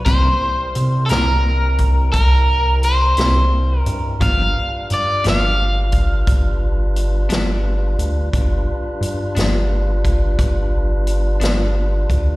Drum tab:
HH |x-xx-xx-xx-x|x-xx-xx-xx-x|x-xx-xx-xx-x|
SD |---o-----o--|---o-----o--|---o-----o--|
BD |o----oo-----|o----oo-----|o----oo----o|